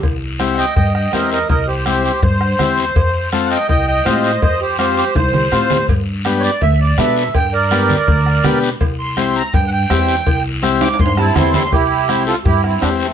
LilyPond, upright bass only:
\new Staff \with { instrumentName = "Upright bass" } { \clef bass \time 4/4 \key c \major \tempo 4 = 164 c,2 g,4 e,4 | c,2 g,4 e,4 | f,2 c,4 a,4 | f,2 c,4 a,4 |
g,2 d,4 b,4 | g,2 d,4 b,4 | c,2 g,4 e,4 | c,2 g,4 e,4 |
c,2 g,4 e,4 | }